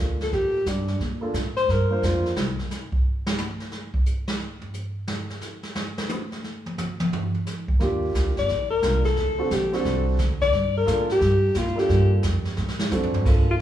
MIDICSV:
0, 0, Header, 1, 6, 480
1, 0, Start_track
1, 0, Key_signature, -2, "minor"
1, 0, Tempo, 340329
1, 1417, Time_signature, 4, 2, 24, 8
1, 19200, End_track
2, 0, Start_track
2, 0, Title_t, "Alto saxophone"
2, 0, Program_c, 0, 65
2, 324, Note_on_c, 0, 69, 83
2, 478, Note_on_c, 0, 67, 75
2, 499, Note_off_c, 0, 69, 0
2, 960, Note_on_c, 0, 62, 60
2, 981, Note_off_c, 0, 67, 0
2, 1428, Note_off_c, 0, 62, 0
2, 2206, Note_on_c, 0, 72, 95
2, 2412, Note_on_c, 0, 70, 80
2, 2434, Note_off_c, 0, 72, 0
2, 2891, Note_on_c, 0, 65, 69
2, 2912, Note_off_c, 0, 70, 0
2, 3268, Note_off_c, 0, 65, 0
2, 11824, Note_on_c, 0, 74, 87
2, 12263, Note_off_c, 0, 74, 0
2, 12274, Note_on_c, 0, 70, 85
2, 12727, Note_off_c, 0, 70, 0
2, 12765, Note_on_c, 0, 69, 88
2, 13441, Note_on_c, 0, 67, 76
2, 13462, Note_off_c, 0, 69, 0
2, 13739, Note_off_c, 0, 67, 0
2, 13765, Note_on_c, 0, 69, 84
2, 14194, Note_off_c, 0, 69, 0
2, 14690, Note_on_c, 0, 74, 108
2, 15136, Note_off_c, 0, 74, 0
2, 15193, Note_on_c, 0, 70, 90
2, 15628, Note_off_c, 0, 70, 0
2, 15680, Note_on_c, 0, 67, 87
2, 16324, Note_on_c, 0, 65, 80
2, 16345, Note_off_c, 0, 67, 0
2, 16632, Note_on_c, 0, 67, 87
2, 16653, Note_off_c, 0, 65, 0
2, 17100, Note_off_c, 0, 67, 0
2, 19053, Note_on_c, 0, 65, 72
2, 19119, Note_off_c, 0, 65, 0
2, 19200, End_track
3, 0, Start_track
3, 0, Title_t, "Grand piano"
3, 0, Program_c, 1, 0
3, 0, Note_on_c, 1, 58, 51
3, 0, Note_on_c, 1, 62, 48
3, 0, Note_on_c, 1, 65, 50
3, 0, Note_on_c, 1, 69, 58
3, 832, Note_off_c, 1, 58, 0
3, 835, Note_off_c, 1, 62, 0
3, 838, Note_off_c, 1, 65, 0
3, 843, Note_off_c, 1, 69, 0
3, 1708, Note_on_c, 1, 58, 61
3, 1717, Note_on_c, 1, 65, 55
3, 1720, Note_on_c, 1, 62, 59
3, 1728, Note_on_c, 1, 69, 65
3, 1870, Note_off_c, 1, 58, 0
3, 1875, Note_off_c, 1, 65, 0
3, 1876, Note_off_c, 1, 62, 0
3, 1880, Note_off_c, 1, 69, 0
3, 2678, Note_on_c, 1, 58, 58
3, 2683, Note_on_c, 1, 62, 55
3, 2691, Note_on_c, 1, 65, 57
3, 2710, Note_on_c, 1, 72, 68
3, 3298, Note_off_c, 1, 58, 0
3, 3300, Note_off_c, 1, 62, 0
3, 3305, Note_off_c, 1, 65, 0
3, 3314, Note_off_c, 1, 72, 0
3, 10995, Note_on_c, 1, 58, 65
3, 11007, Note_on_c, 1, 62, 55
3, 11012, Note_on_c, 1, 65, 59
3, 11023, Note_on_c, 1, 67, 70
3, 11734, Note_off_c, 1, 58, 0
3, 11740, Note_off_c, 1, 62, 0
3, 11743, Note_off_c, 1, 65, 0
3, 11748, Note_off_c, 1, 67, 0
3, 12438, Note_on_c, 1, 58, 58
3, 12452, Note_on_c, 1, 62, 55
3, 12458, Note_on_c, 1, 65, 53
3, 12466, Note_on_c, 1, 70, 64
3, 12727, Note_off_c, 1, 58, 0
3, 12734, Note_off_c, 1, 62, 0
3, 12737, Note_off_c, 1, 65, 0
3, 12741, Note_off_c, 1, 70, 0
3, 13233, Note_on_c, 1, 60, 65
3, 13242, Note_on_c, 1, 62, 59
3, 13249, Note_on_c, 1, 66, 60
3, 13257, Note_on_c, 1, 69, 70
3, 13393, Note_off_c, 1, 60, 0
3, 13398, Note_off_c, 1, 62, 0
3, 13401, Note_off_c, 1, 66, 0
3, 13405, Note_off_c, 1, 69, 0
3, 13713, Note_on_c, 1, 60, 70
3, 13723, Note_on_c, 1, 62, 66
3, 13734, Note_on_c, 1, 66, 66
3, 13740, Note_on_c, 1, 69, 74
3, 14337, Note_off_c, 1, 60, 0
3, 14341, Note_off_c, 1, 62, 0
3, 14347, Note_off_c, 1, 66, 0
3, 14350, Note_off_c, 1, 69, 0
3, 15314, Note_on_c, 1, 58, 67
3, 15321, Note_on_c, 1, 62, 62
3, 15332, Note_on_c, 1, 65, 65
3, 15332, Note_on_c, 1, 69, 81
3, 15605, Note_off_c, 1, 58, 0
3, 15608, Note_off_c, 1, 62, 0
3, 15614, Note_off_c, 1, 65, 0
3, 15614, Note_off_c, 1, 69, 0
3, 16581, Note_on_c, 1, 58, 67
3, 16590, Note_on_c, 1, 62, 61
3, 16591, Note_on_c, 1, 65, 62
3, 16610, Note_on_c, 1, 69, 68
3, 17210, Note_off_c, 1, 58, 0
3, 17214, Note_off_c, 1, 62, 0
3, 17215, Note_off_c, 1, 65, 0
3, 17225, Note_off_c, 1, 69, 0
3, 18208, Note_on_c, 1, 60, 65
3, 18216, Note_on_c, 1, 62, 60
3, 18223, Note_on_c, 1, 66, 57
3, 18227, Note_on_c, 1, 69, 72
3, 18685, Note_off_c, 1, 62, 0
3, 18693, Note_off_c, 1, 60, 0
3, 18694, Note_on_c, 1, 58, 54
3, 18700, Note_off_c, 1, 66, 0
3, 18702, Note_off_c, 1, 69, 0
3, 18706, Note_on_c, 1, 62, 49
3, 18710, Note_on_c, 1, 65, 52
3, 18728, Note_on_c, 1, 69, 64
3, 19200, Note_off_c, 1, 58, 0
3, 19200, Note_off_c, 1, 62, 0
3, 19200, Note_off_c, 1, 65, 0
3, 19200, Note_off_c, 1, 69, 0
3, 19200, End_track
4, 0, Start_track
4, 0, Title_t, "Upright bass"
4, 0, Program_c, 2, 32
4, 0, Note_on_c, 2, 38, 83
4, 441, Note_off_c, 2, 38, 0
4, 451, Note_on_c, 2, 45, 73
4, 920, Note_off_c, 2, 45, 0
4, 928, Note_on_c, 2, 43, 79
4, 1398, Note_off_c, 2, 43, 0
4, 1407, Note_on_c, 2, 46, 78
4, 1877, Note_off_c, 2, 46, 0
4, 1886, Note_on_c, 2, 45, 82
4, 2356, Note_off_c, 2, 45, 0
4, 2369, Note_on_c, 2, 43, 70
4, 2838, Note_off_c, 2, 43, 0
4, 2854, Note_on_c, 2, 41, 81
4, 3321, Note_off_c, 2, 41, 0
4, 3332, Note_on_c, 2, 36, 78
4, 3634, Note_off_c, 2, 36, 0
4, 11005, Note_on_c, 2, 39, 81
4, 11477, Note_off_c, 2, 39, 0
4, 11491, Note_on_c, 2, 38, 84
4, 11647, Note_on_c, 2, 34, 52
4, 11669, Note_off_c, 2, 38, 0
4, 11798, Note_off_c, 2, 34, 0
4, 11806, Note_on_c, 2, 31, 66
4, 11960, Note_off_c, 2, 31, 0
4, 11969, Note_on_c, 2, 34, 76
4, 12435, Note_off_c, 2, 34, 0
4, 12444, Note_on_c, 2, 36, 82
4, 12916, Note_off_c, 2, 36, 0
4, 12930, Note_on_c, 2, 38, 82
4, 13399, Note_off_c, 2, 38, 0
4, 13407, Note_on_c, 2, 34, 86
4, 13878, Note_off_c, 2, 34, 0
4, 13886, Note_on_c, 2, 36, 82
4, 14357, Note_off_c, 2, 36, 0
4, 14367, Note_on_c, 2, 38, 89
4, 14838, Note_off_c, 2, 38, 0
4, 14844, Note_on_c, 2, 43, 87
4, 15316, Note_off_c, 2, 43, 0
4, 15334, Note_on_c, 2, 45, 92
4, 15802, Note_off_c, 2, 45, 0
4, 15808, Note_on_c, 2, 43, 80
4, 16278, Note_off_c, 2, 43, 0
4, 16291, Note_on_c, 2, 46, 89
4, 16760, Note_off_c, 2, 46, 0
4, 16771, Note_on_c, 2, 43, 89
4, 17240, Note_off_c, 2, 43, 0
4, 17249, Note_on_c, 2, 41, 91
4, 17719, Note_off_c, 2, 41, 0
4, 17734, Note_on_c, 2, 45, 84
4, 18201, Note_off_c, 2, 45, 0
4, 18212, Note_on_c, 2, 42, 89
4, 18680, Note_off_c, 2, 42, 0
4, 18691, Note_on_c, 2, 38, 80
4, 18982, Note_off_c, 2, 38, 0
4, 19200, End_track
5, 0, Start_track
5, 0, Title_t, "Muted upright bass strokes"
5, 19000, Note_on_c, 9, 29, 34
5, 19142, Note_off_c, 9, 29, 0
5, 19200, End_track
6, 0, Start_track
6, 0, Title_t, "Drums"
6, 288, Note_on_c, 9, 38, 37
6, 429, Note_off_c, 9, 38, 0
6, 449, Note_on_c, 9, 36, 23
6, 457, Note_on_c, 9, 25, 49
6, 457, Note_on_c, 9, 38, 40
6, 591, Note_off_c, 9, 36, 0
6, 598, Note_off_c, 9, 38, 0
6, 929, Note_on_c, 9, 36, 20
6, 934, Note_on_c, 9, 38, 55
6, 934, Note_on_c, 9, 44, 50
6, 1070, Note_off_c, 9, 36, 0
6, 1075, Note_off_c, 9, 38, 0
6, 1075, Note_off_c, 9, 44, 0
6, 1241, Note_on_c, 9, 38, 47
6, 1382, Note_off_c, 9, 38, 0
6, 1409, Note_on_c, 9, 36, 23
6, 1414, Note_off_c, 9, 25, 0
6, 1414, Note_on_c, 9, 25, 44
6, 1414, Note_on_c, 9, 38, 40
6, 1550, Note_off_c, 9, 36, 0
6, 1555, Note_off_c, 9, 38, 0
6, 1891, Note_on_c, 9, 36, 18
6, 1891, Note_on_c, 9, 38, 59
6, 1891, Note_on_c, 9, 44, 54
6, 2032, Note_off_c, 9, 36, 0
6, 2032, Note_off_c, 9, 38, 0
6, 2032, Note_off_c, 9, 44, 0
6, 2209, Note_on_c, 9, 38, 36
6, 2350, Note_off_c, 9, 38, 0
6, 2373, Note_on_c, 9, 36, 26
6, 2379, Note_off_c, 9, 25, 0
6, 2379, Note_on_c, 9, 25, 42
6, 2379, Note_on_c, 9, 38, 40
6, 2514, Note_off_c, 9, 36, 0
6, 2520, Note_off_c, 9, 38, 0
6, 2856, Note_on_c, 9, 36, 23
6, 2864, Note_on_c, 9, 38, 52
6, 2864, Note_on_c, 9, 44, 56
6, 2997, Note_off_c, 9, 36, 0
6, 3005, Note_off_c, 9, 38, 0
6, 3005, Note_off_c, 9, 44, 0
6, 3180, Note_on_c, 9, 38, 36
6, 3321, Note_off_c, 9, 38, 0
6, 3333, Note_on_c, 9, 38, 86
6, 3475, Note_off_c, 9, 38, 0
6, 3649, Note_on_c, 9, 38, 35
6, 3715, Note_off_c, 9, 25, 0
6, 3790, Note_off_c, 9, 38, 0
6, 3818, Note_on_c, 9, 38, 46
6, 3818, Note_on_c, 9, 44, 52
6, 3959, Note_off_c, 9, 38, 0
6, 3959, Note_off_c, 9, 44, 0
6, 4123, Note_on_c, 9, 36, 73
6, 4264, Note_off_c, 9, 36, 0
6, 4605, Note_on_c, 9, 38, 91
6, 4746, Note_off_c, 9, 38, 0
6, 4771, Note_on_c, 9, 44, 50
6, 4771, Note_on_c, 9, 48, 90
6, 4912, Note_off_c, 9, 44, 0
6, 4912, Note_off_c, 9, 48, 0
6, 5077, Note_on_c, 9, 38, 39
6, 5218, Note_off_c, 9, 38, 0
6, 5238, Note_on_c, 9, 38, 42
6, 5379, Note_off_c, 9, 38, 0
6, 5554, Note_on_c, 9, 36, 73
6, 5695, Note_off_c, 9, 36, 0
6, 5726, Note_on_c, 9, 44, 55
6, 5867, Note_off_c, 9, 44, 0
6, 6031, Note_on_c, 9, 38, 86
6, 6172, Note_off_c, 9, 38, 0
6, 6200, Note_on_c, 9, 38, 36
6, 6341, Note_off_c, 9, 38, 0
6, 6509, Note_on_c, 9, 43, 44
6, 6650, Note_off_c, 9, 43, 0
6, 6679, Note_on_c, 9, 44, 54
6, 6820, Note_off_c, 9, 44, 0
6, 7158, Note_on_c, 9, 38, 88
6, 7299, Note_off_c, 9, 38, 0
6, 7473, Note_on_c, 9, 38, 41
6, 7614, Note_off_c, 9, 38, 0
6, 7633, Note_on_c, 9, 38, 39
6, 7633, Note_on_c, 9, 44, 57
6, 7774, Note_off_c, 9, 38, 0
6, 7774, Note_off_c, 9, 44, 0
6, 7942, Note_on_c, 9, 38, 43
6, 8083, Note_off_c, 9, 38, 0
6, 8114, Note_on_c, 9, 38, 98
6, 8255, Note_off_c, 9, 38, 0
6, 8432, Note_on_c, 9, 38, 89
6, 8573, Note_off_c, 9, 38, 0
6, 8594, Note_on_c, 9, 44, 54
6, 8594, Note_on_c, 9, 48, 92
6, 8735, Note_off_c, 9, 44, 0
6, 8735, Note_off_c, 9, 48, 0
6, 8911, Note_on_c, 9, 38, 45
6, 9052, Note_off_c, 9, 38, 0
6, 9082, Note_on_c, 9, 38, 46
6, 9223, Note_off_c, 9, 38, 0
6, 9393, Note_on_c, 9, 47, 43
6, 9534, Note_off_c, 9, 47, 0
6, 9564, Note_on_c, 9, 44, 55
6, 9564, Note_on_c, 9, 47, 89
6, 9706, Note_off_c, 9, 44, 0
6, 9706, Note_off_c, 9, 47, 0
6, 9871, Note_on_c, 9, 47, 90
6, 10012, Note_off_c, 9, 47, 0
6, 10052, Note_on_c, 9, 43, 91
6, 10193, Note_off_c, 9, 43, 0
6, 10356, Note_on_c, 9, 43, 40
6, 10497, Note_off_c, 9, 43, 0
6, 10528, Note_on_c, 9, 38, 45
6, 10528, Note_on_c, 9, 44, 51
6, 10669, Note_off_c, 9, 38, 0
6, 10669, Note_off_c, 9, 44, 0
6, 10837, Note_on_c, 9, 36, 71
6, 10978, Note_off_c, 9, 36, 0
6, 11004, Note_on_c, 9, 25, 49
6, 11004, Note_on_c, 9, 38, 44
6, 11006, Note_on_c, 9, 36, 23
6, 11145, Note_off_c, 9, 38, 0
6, 11147, Note_off_c, 9, 36, 0
6, 11490, Note_on_c, 9, 36, 19
6, 11494, Note_on_c, 9, 38, 60
6, 11494, Note_on_c, 9, 44, 52
6, 11631, Note_off_c, 9, 36, 0
6, 11635, Note_off_c, 9, 38, 0
6, 11635, Note_off_c, 9, 44, 0
6, 11801, Note_on_c, 9, 38, 37
6, 11942, Note_off_c, 9, 38, 0
6, 11964, Note_off_c, 9, 25, 0
6, 11964, Note_on_c, 9, 25, 48
6, 11964, Note_on_c, 9, 38, 41
6, 11969, Note_on_c, 9, 36, 20
6, 12105, Note_off_c, 9, 38, 0
6, 12110, Note_off_c, 9, 36, 0
6, 12448, Note_on_c, 9, 36, 18
6, 12448, Note_on_c, 9, 38, 59
6, 12448, Note_on_c, 9, 44, 55
6, 12589, Note_off_c, 9, 36, 0
6, 12589, Note_off_c, 9, 38, 0
6, 12589, Note_off_c, 9, 44, 0
6, 12751, Note_on_c, 9, 38, 38
6, 12756, Note_on_c, 9, 36, 55
6, 12892, Note_off_c, 9, 38, 0
6, 12897, Note_off_c, 9, 36, 0
6, 12924, Note_off_c, 9, 25, 0
6, 12924, Note_on_c, 9, 25, 44
6, 12924, Note_on_c, 9, 38, 45
6, 13065, Note_off_c, 9, 38, 0
6, 13411, Note_on_c, 9, 36, 23
6, 13411, Note_on_c, 9, 38, 59
6, 13411, Note_on_c, 9, 44, 58
6, 13552, Note_off_c, 9, 36, 0
6, 13552, Note_off_c, 9, 38, 0
6, 13552, Note_off_c, 9, 44, 0
6, 13724, Note_on_c, 9, 38, 39
6, 13865, Note_off_c, 9, 38, 0
6, 13888, Note_on_c, 9, 36, 22
6, 13891, Note_off_c, 9, 25, 0
6, 13891, Note_on_c, 9, 25, 52
6, 13891, Note_on_c, 9, 38, 46
6, 14029, Note_off_c, 9, 36, 0
6, 14032, Note_off_c, 9, 38, 0
6, 14367, Note_on_c, 9, 36, 21
6, 14367, Note_on_c, 9, 38, 59
6, 14367, Note_on_c, 9, 44, 52
6, 14508, Note_off_c, 9, 36, 0
6, 14508, Note_off_c, 9, 38, 0
6, 14508, Note_off_c, 9, 44, 0
6, 14679, Note_on_c, 9, 36, 53
6, 14681, Note_on_c, 9, 38, 37
6, 14820, Note_off_c, 9, 36, 0
6, 14822, Note_off_c, 9, 38, 0
6, 14848, Note_on_c, 9, 36, 25
6, 14850, Note_off_c, 9, 25, 0
6, 14850, Note_on_c, 9, 25, 44
6, 14850, Note_on_c, 9, 38, 42
6, 14989, Note_off_c, 9, 36, 0
6, 14991, Note_off_c, 9, 38, 0
6, 15331, Note_on_c, 9, 36, 19
6, 15339, Note_on_c, 9, 38, 61
6, 15339, Note_on_c, 9, 44, 56
6, 15472, Note_off_c, 9, 36, 0
6, 15480, Note_off_c, 9, 38, 0
6, 15480, Note_off_c, 9, 44, 0
6, 15646, Note_on_c, 9, 38, 40
6, 15787, Note_off_c, 9, 38, 0
6, 15807, Note_on_c, 9, 36, 23
6, 15808, Note_off_c, 9, 25, 0
6, 15808, Note_on_c, 9, 25, 41
6, 15808, Note_on_c, 9, 38, 47
6, 15948, Note_off_c, 9, 36, 0
6, 15949, Note_off_c, 9, 38, 0
6, 16284, Note_on_c, 9, 38, 63
6, 16284, Note_on_c, 9, 44, 55
6, 16288, Note_on_c, 9, 36, 20
6, 16426, Note_off_c, 9, 38, 0
6, 16426, Note_off_c, 9, 44, 0
6, 16429, Note_off_c, 9, 36, 0
6, 16460, Note_on_c, 9, 38, 28
6, 16601, Note_off_c, 9, 38, 0
6, 16621, Note_on_c, 9, 38, 43
6, 16762, Note_off_c, 9, 38, 0
6, 16767, Note_on_c, 9, 36, 24
6, 16770, Note_off_c, 9, 25, 0
6, 16770, Note_on_c, 9, 25, 42
6, 16770, Note_on_c, 9, 38, 42
6, 16908, Note_off_c, 9, 36, 0
6, 16911, Note_off_c, 9, 38, 0
6, 17245, Note_on_c, 9, 38, 64
6, 17245, Note_on_c, 9, 44, 52
6, 17248, Note_on_c, 9, 36, 20
6, 17386, Note_off_c, 9, 38, 0
6, 17386, Note_off_c, 9, 44, 0
6, 17389, Note_off_c, 9, 36, 0
6, 17560, Note_on_c, 9, 38, 41
6, 17702, Note_off_c, 9, 38, 0
6, 17722, Note_on_c, 9, 38, 48
6, 17863, Note_off_c, 9, 38, 0
6, 17886, Note_on_c, 9, 38, 52
6, 18027, Note_off_c, 9, 38, 0
6, 18041, Note_on_c, 9, 38, 75
6, 18182, Note_off_c, 9, 38, 0
6, 18214, Note_on_c, 9, 44, 59
6, 18214, Note_on_c, 9, 47, 60
6, 18355, Note_off_c, 9, 44, 0
6, 18355, Note_off_c, 9, 47, 0
6, 18377, Note_on_c, 9, 43, 76
6, 18518, Note_off_c, 9, 43, 0
6, 18531, Note_on_c, 9, 43, 83
6, 18672, Note_off_c, 9, 43, 0
6, 18694, Note_on_c, 9, 36, 68
6, 18696, Note_off_c, 9, 25, 0
6, 18696, Note_on_c, 9, 25, 42
6, 18696, Note_on_c, 9, 38, 40
6, 18696, Note_on_c, 9, 49, 67
6, 18835, Note_off_c, 9, 36, 0
6, 18837, Note_off_c, 9, 38, 0
6, 18837, Note_off_c, 9, 49, 0
6, 19200, Note_off_c, 9, 25, 0
6, 19200, End_track
0, 0, End_of_file